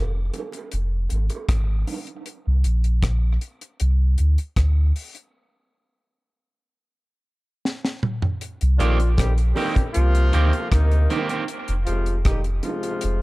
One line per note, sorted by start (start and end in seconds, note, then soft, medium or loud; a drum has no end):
0.00 0.30 F1 medium
0.34 closed hi-hat medium
0.34 high bongo medium
0.34 low bongo medium
0.52 closed hi-hat medium
0.52 high bongo medium
0.72 1.08 F1 loud
0.72 closed hi-hat medium
1.09 1.29 G#1 loud
1.09 closed hi-hat medium
1.09 high bongo soft
1.30 closed hi-hat medium
1.30 high bongo medium
1.49 1.84 G#1 medium
1.49 kick medium
1.49 cross-stick medium
1.49 closed hi-hat medium
1.87 open hi-hat medium
1.87 low bongo medium
2.07 closed hi-hat medium
2.26 closed hi-hat medium
2.47 2.64 C2 loud
2.64 3.38 A#1 medium
2.64 closed hi-hat medium
2.84 closed hi-hat soft
3.03 kick loud
3.03 cross-stick loud
3.03 closed hi-hat medium
3.41 closed hi-hat medium
3.61 closed hi-hat medium
3.80 4.16 C2 loud
3.80 closed hi-hat medium
4.18 4.37 D2 medium
4.18 closed hi-hat medium
4.38 closed hi-hat medium
4.56 4.92 D2 loud
4.56 kick medium
4.56 cross-stick loud
4.56 closed hi-hat medium
4.96 open hi-hat medium
5.15 closed hi-hat soft
7.65 snare medium
7.85 snare medium
8.03 mid tom medium
8.22 floor tom medium
8.41 closed hi-hat medium
8.61 8.79 C2 loud
8.61 closed hi-hat medium
8.78 9.53 A#1 medium
8.78 8.97 D#3 medium
8.78 9.10 F3 medium
8.78 8.98 A#3 medium
8.78 8.98 C4 loud
8.78 9.10 D4 medium
8.78 9.10 F4 medium
8.78 8.98 G4 medium
8.78 closed hi-hat medium
8.78 high bongo medium
9.00 closed hi-hat medium
9.17 9.33 D#3 medium
9.17 9.33 G3 medium
9.17 9.33 C4 medium
9.17 9.33 G4 medium
9.17 kick loud
9.17 cross-stick loud
9.17 closed hi-hat loud
9.17 high bongo medium
9.38 closed hi-hat medium
9.55 9.87 D#3 medium
9.55 9.74 D#3 medium
9.55 9.87 G3 medium
9.55 9.75 A#3 medium
9.55 9.87 C4 medium
9.55 9.75 C4 medium
9.55 9.87 G4 loud
9.55 9.75 G4 medium
9.55 open hi-hat soft
9.55 high bongo medium
9.55 low bongo medium
9.75 kick medium
9.75 closed hi-hat medium
9.75 high bongo medium
9.94 10.31 C2 loud
9.94 10.67 C3 loud
9.94 10.67 F3 loud
9.94 10.67 A#3 loud
9.94 10.67 F4 loud
9.94 closed hi-hat medium
10.15 closed hi-hat medium
10.33 10.52 D2 medium
10.33 10.51 D#3 medium
10.33 10.51 A#3 medium
10.33 10.51 C4 medium
10.33 10.52 G4 loud
10.33 closed hi-hat medium
10.53 closed hi-hat medium
10.53 high bongo medium
10.72 11.07 D2 loud
10.72 11.26 C3 loud
10.72 11.26 D#3 medium
10.72 11.27 A#3 medium
10.72 11.26 D#4 loud
10.72 kick loud
10.72 cross-stick loud
10.72 closed hi-hat medium
10.92 closed hi-hat soft
11.10 11.28 D#3 medium
11.10 11.28 A#3 medium
11.10 11.28 C4 medium
11.10 11.29 G4 medium
11.10 closed hi-hat medium
11.10 low bongo medium
11.29 11.44 D#3 medium
11.29 11.43 A#3 medium
11.29 11.44 C4 medium
11.29 11.43 G4 medium
11.29 closed hi-hat medium
11.48 closed hi-hat medium
11.68 11.86 F1 loud
11.68 closed hi-hat medium
11.86 12.60 F1 medium
11.86 12.17 C3 medium
11.86 12.17 F3 medium
11.86 12.17 G#3 medium
11.86 12.17 F4 medium
11.86 closed hi-hat medium
11.86 high bongo medium
12.06 closed hi-hat medium
12.25 12.41 G3 medium
12.25 12.41 D#4 medium
12.25 12.41 G4 medium
12.25 kick loud
12.25 cross-stick loud
12.25 closed hi-hat loud
12.25 high bongo medium
12.44 closed hi-hat medium
12.63 13.22 C3 medium
12.63 13.22 F3 medium
12.63 13.22 G#3 medium
12.63 13.22 F4 medium
12.63 closed hi-hat medium
12.63 high bongo medium
12.63 low bongo medium
12.83 closed hi-hat medium
12.83 high bongo medium
13.01 13.22 F1 loud
13.01 closed hi-hat loud